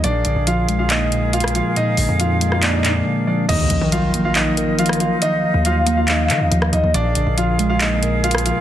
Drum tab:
CC |------------------------------------------------|------------------------------------------------|x-----------------------------------------------|------------------------------------------------|
HH |x-----x-----x-----x-----x-----x-----x-x-x-x-----|x-----o-----x-----x-----x-----x-----------------|x-----x-----x-----x-----x-----x-----x-x-x-x-----|x-----------x-----x-----x-----x-----x-----x-----|
CP |------------------------x-----------------------|------------------------x-----x-----------------|------------------------x-----------------------|------------------------x-----x-----------------|
SD |---------------------------------------r--------|---------------------r--------------------------|---------------------------------------r--------|---------------------------------------r--------|

CC |------------------------------------------------|
HH |x-----x-----x-----x-----x-----x-----x-x-x-x-----|
CP |------------------------x-----------------------|
SD |---------------------------------------r--------|